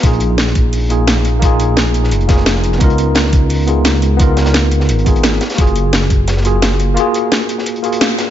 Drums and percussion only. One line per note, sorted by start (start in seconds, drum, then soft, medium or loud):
0.03 kick loud
0.03 closed hi-hat medium
0.13 closed hi-hat soft
0.20 closed hi-hat medium
0.38 snare loud
0.38 closed hi-hat medium
0.47 snare medium
0.55 kick loud
0.55 closed hi-hat medium
0.73 closed hi-hat medium
0.73 open hi-hat medium
0.90 closed hi-hat medium
1.08 snare loud
1.08 closed hi-hat medium
1.17 snare soft
1.25 closed hi-hat medium
1.42 kick loud
1.42 closed hi-hat medium
1.59 closed hi-hat medium
1.77 snare loud
1.77 closed hi-hat medium
1.94 closed hi-hat medium
2.04 snare soft
2.11 closed hi-hat medium
2.21 closed hi-hat soft
2.29 kick loud
2.29 snare loud
2.29 closed hi-hat medium
2.37 snare soft
2.46 snare loud
2.46 closed hi-hat medium
2.55 snare medium
2.64 closed hi-hat medium
2.72 snare soft
2.80 kick loud
2.80 closed hi-hat medium
2.90 closed hi-hat soft
2.98 closed hi-hat medium
3.15 snare loud
3.15 closed hi-hat medium
3.25 snare soft
3.33 kick loud
3.33 closed hi-hat medium
3.50 closed hi-hat medium
3.50 open hi-hat medium
3.67 closed hi-hat medium
3.85 snare loud
3.85 closed hi-hat medium
3.94 snare soft
4.02 closed hi-hat medium
4.19 kick loud
4.19 closed hi-hat medium
4.37 snare loud
4.37 closed hi-hat medium
4.46 snare loud
4.46 closed hi-hat medium
4.53 snare loud
4.53 closed hi-hat medium
4.71 closed hi-hat medium
4.80 snare medium
4.89 closed hi-hat medium
4.99 closed hi-hat soft
5.06 kick loud
5.06 closed hi-hat medium
5.16 closed hi-hat soft
5.24 snare loud
5.24 closed hi-hat medium
5.32 snare medium
5.41 snare loud
5.41 closed hi-hat medium
5.50 snare medium
5.50 closed hi-hat medium
5.54 snare medium
5.54 closed hi-hat medium
5.58 kick loud
5.58 closed hi-hat medium
5.67 closed hi-hat soft
5.76 closed hi-hat medium
5.93 snare loud
5.93 closed hi-hat medium
6.02 snare medium
6.10 kick loud
6.10 closed hi-hat medium
6.27 snare medium
6.27 closed hi-hat medium
6.37 snare soft
6.45 closed hi-hat medium
6.62 snare loud
6.62 closed hi-hat medium
6.72 snare soft
6.79 closed hi-hat medium
6.97 closed hi-hat medium
7.14 closed hi-hat medium
7.32 snare loud
7.32 closed hi-hat medium
7.49 closed hi-hat medium
7.58 snare medium
7.66 closed hi-hat medium
7.76 closed hi-hat soft
7.84 closed hi-hat medium
7.92 closed hi-hat medium
8.01 snare loud
8.01 closed hi-hat medium
8.01 closed hi-hat soft
8.10 closed hi-hat medium
8.18 snare loud
8.18 closed hi-hat medium